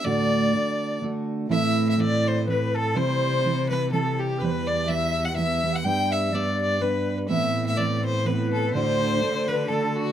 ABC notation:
X:1
M:3/4
L:1/16
Q:"Swing" 1/4=124
K:Dmix
V:1 name="Fiddle"
d8 z4 | e3 e d2 c2 B2 A2 | c6 B2 A2 G2 | B2 d2 e3 f e3 f |
g2 e2 d2 d2 B3 z | e3 e d2 c2 B2 A2 | c6 B2 A2 F2 |]
V:2 name="Flute"
d8 z4 | e3 e d4 B2 A2 | c6 B2 A2 G2 | B/2 c/2 B d2 e3 f e3 f |
g2 e2 d4 B3 z | e3 e d2 z2 B4 | c6 B2 A2 F2 |]
V:3 name="Steel-string acoustic guitar"
[D,,A,,D,A,DF]4 D,4 [D,A,DF]4 | [A,,E,A,CE]4 [E,A,CE]4 [E,A,CE]4 | [C,E,G,CE]4 [E,G,CE]2 [E,G,CE]2 [E,G,CE]4 | [E,G,B,G]4 [E,G,B,G]4 [E,G,B,G]2 [E,G,B,G]2 |
[G,B,DG]4 [G,B,DG]4 [G,B,DG]4 | [A,,E,B,CE]4 [E,B,CE]4 [E,B,CE]4 | [D,,A,,D,A,DF]4 [D,A,D]2 [D,A,DF]2 [D,A,DF]4 |]
V:4 name="Cello" clef=bass
z12 | A,,12 | C,12 | E,,12 |
G,,12 | A,,12 | D,12 |]